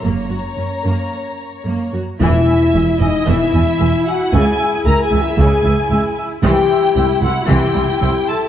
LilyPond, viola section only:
\new Staff \with { instrumentName = "Viola section" } { \clef bass \time 4/4 \key fis \mixolydian \tempo 4 = 114 << { r1 | e'1~ | e'1 | e'1 | } \\ { ais8 fis'8 cis'8 ais8 r4 ais8 fis'8 | e8 r8 gis8 e8 e8 e8 gis8 r8 | cis8 r8 gis8 e8 cis8 e8 gis8 r8 | e8 r8 c'8 g8 e8 g8 c'8 r8 | } >> }